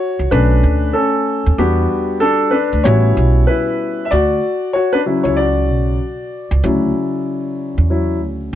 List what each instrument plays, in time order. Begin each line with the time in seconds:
Already playing: grand piano F#4 C#5
0.19 upright bass C#2
0.31 upright bass B1, grand piano A3 C#4 D4 B4
0.63 upright bass D2
0.93 grand piano C#4 A4
1.46 upright bass D#2
1.58 upright bass E2, grand piano G3 B3 D4 F#4 G4
2.20 grand piano D4 A4
2.51 grand piano D4 B4
2.73 upright bass D2
2.84 upright bass A1, grand piano G3 B3 C#4 E4 F#4 C#5
3.17 upright bass B1
3.47 grand piano E4 B4
4.05 grand piano E5
4.11 upright bass D2, grand piano F#4 D5
4.73 grand piano F#4 C#5
4.93 grand piano D4 B4
5.06 grand piano C#3 F#3 E4
5.23 upright bass C#2, grand piano E4 C#5
5.37 grand piano F#4 D5
5.69 upright bass B1
6.51 upright bass C#2
6.64 upright bass D2, grand piano C#3 F#3 E4
7.78 upright bass E2
7.90 grand piano F#3 E4 C#5
8.21 upright bass D2